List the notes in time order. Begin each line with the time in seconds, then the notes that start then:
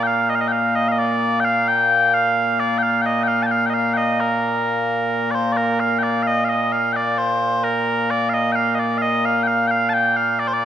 Already playing: A#2 A#3
0.03 F5 G5
0.29 D#5
0.35 F5
0.41 D#5
0.48 G5
0.52 F5
0.75 D#5
0.88 D#5 F5
0.98 D5
1.40 G5
1.44 F5
1.68 G5
2.14 F5
2.60 D5
2.78 G5
2.82 F5
3.02 G5
3.06 D#5
3.23 G5
3.28 F5
3.43 G5 A5
3.51 F5
3.66 D#5 G5
3.74 F5
3.93 D#5 G5
4.20 A#4
5.31 C5 D5
5.53 D5
5.57 A#4
5.80 F5
5.98 G5
6.03 D5
6.23 F5
6.27 D#5
6.45 F5
6.49 D#5
6.72 F5
6.93 D5 G5
7.18 C5
7.64 A#4
8.11 D5
8.29 F5
8.34 D#5
8.52 F5 G5
8.75 D#5
8.79 D5
8.98 D#5 F5
9.25 F5
9.43 G5
9.47 F5
9.67 F5 G5
9.89 A5
9.94 G5
10.16 F5
10.39 D5
10.48 C5
10.54 D5